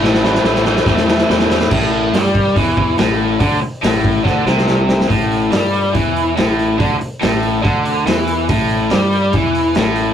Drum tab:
CC |----------------|x---------------|----------------|----------------|
HH |----------------|----o---o---o---|o---o-----------|o-o-o-o-o-o-o-o-|
SD |oooooooooooooooo|----o-------o---|----o---o-ooo-oo|----o-------o---|
BD |--------o-------|o-----o-o-o-----|o-----o-o-------|o-------o-------|

CC |----------------|----------------|
HH |o-o-o-o-o-o-o-o-|o-o-o-o-o-o-o-o-|
SD |----o-------o---|----o-------o---|
BD |o-------o-------|o-------o-------|